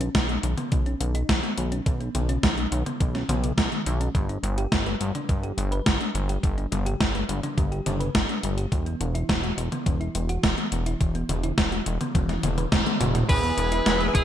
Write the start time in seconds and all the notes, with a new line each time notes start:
0.01 C#4, closed hi-hat
0.15 B1 D#3, kick, snare, closed hi-hat
0.29 D#4, closed hi-hat
0.43 B1 D#3, closed hi-hat
0.58 B3, closed hi-hat, mid tom
0.72 B1 D#3, kick, closed hi-hat
0.86 C#4, closed hi-hat
1.00 B1 D#3, closed hi-hat
1.15 D#4, closed hi-hat
1.29 B1 D#3, kick, snare, closed hi-hat
1.43 B3, closed hi-hat
1.57 B1 D#3, closed hi-hat
1.72 C#4, closed hi-hat
1.86 B1 D#3, kick, closed hi-hat
2.00 B3, closed hi-hat
2.15 B1 D#3, closed hi-hat, mid tom
2.29 C#4, closed hi-hat
2.43 B1 D#3, kick, snare, closed hi-hat
2.58 D#4, closed hi-hat
2.72 B1 D#3, closed hi-hat
2.86 B3, closed hi-hat, mid tom
3.00 B1 D#3, kick, closed hi-hat
3.15 C#4, snare, closed hi-hat
3.29 B1 B3, closed hi-hat, mid tom
3.43 F#3, closed hi-hat
3.58 B1 B3, kick, snare, closed hi-hat
3.72 D#3, closed hi-hat
3.86 B1 D#3, closed hi-hat
4.01 C#4, closed hi-hat
4.15 G1 G3, kick, closed hi-hat
4.29 D4, closed hi-hat
4.43 G1 G3, closed hi-hat
4.58 G4, closed hi-hat
4.72 G1 G3, kick, snare, closed hi-hat
4.86 B4, closed hi-hat
5.00 G1 G3, closed hi-hat
5.15 D4, closed hi-hat, mid tom
5.29 G1 G3, kick, closed hi-hat
5.43 G4, closed hi-hat
5.57 G1 G3, closed hi-hat
5.72 B4, closed hi-hat
5.86 G1 G3, kick, snare, closed hi-hat
6.00 D4, closed hi-hat
6.15 G1 G3, closed hi-hat
6.29 G4, closed hi-hat
6.43 G1 G3, kick, closed hi-hat
6.57 D4, closed hi-hat
6.72 G1 G3, closed hi-hat, mid tom
6.86 G4, closed hi-hat
7.00 G1 G3, kick, snare, closed hi-hat
7.15 B4, closed hi-hat
7.29 G1 G3, closed hi-hat
7.43 D4, closed hi-hat, mid tom
7.57 G1 G3, kick, closed hi-hat
7.72 G4, closed hi-hat
7.86 G1 G3, closed hi-hat, mid tom
8.00 B4, closed hi-hat
8.15 G1 G3, kick, snare, closed hi-hat
8.29 D4, closed hi-hat
8.43 G1 G3, closed hi-hat
8.58 G4, closed hi-hat
8.72 E1 E3, kick, closed hi-hat
8.86 B3, closed hi-hat
9.00 E1 E3, closed hi-hat
9.15 E4, closed hi-hat
9.29 E1 E3, kick, snare, closed hi-hat
9.43 F#4, closed hi-hat
9.58 E1 E3, closed hi-hat
9.72 B3, closed hi-hat, mid tom
9.86 E1 E3, kick, closed hi-hat
10.01 E4, closed hi-hat
10.15 E1 E3, closed hi-hat
10.29 F#4, closed hi-hat
10.43 E1 E3, kick, snare, closed hi-hat
10.58 B3, closed hi-hat
10.72 E1 E3, closed hi-hat
10.86 E4, closed hi-hat
11.01 E1 E3, kick, closed hi-hat
11.15 B3, closed hi-hat
11.29 E1 E3, closed hi-hat, mid tom
11.44 E4, closed hi-hat
11.58 E1 E3, kick, snare, closed hi-hat
11.72 F#4, closed hi-hat
11.86 E1 E3, closed hi-hat
12.01 B3, closed hi-hat, mid tom
12.15 E1 E3, kick, closed hi-hat, high tom
12.29 E4, snare, closed hi-hat, high tom
12.43 E1 E4, closed hi-hat, mid tom
12.58 B4, closed hi-hat, mid tom
12.72 E1 E4, kick, snare, closed hi-hat, mid tom
12.86 B3, closed hi-hat, mid tom
13.00 E1 F#4, closed hi-hat, mid tom
13.15 E4, closed hi-hat, mid tom
13.29 E1 E3 B3 E4 G#4 B4 G#5, kick, closed hi-hat, crash
13.43 B3, closed hi-hat
13.58 E1 E3, closed hi-hat
13.72 B3 E4 B4, closed hi-hat
13.86 E1 E3, snare, closed hi-hat
14.01 G#4, closed hi-hat
14.15 E1 E3 G#4, kick, closed hi-hat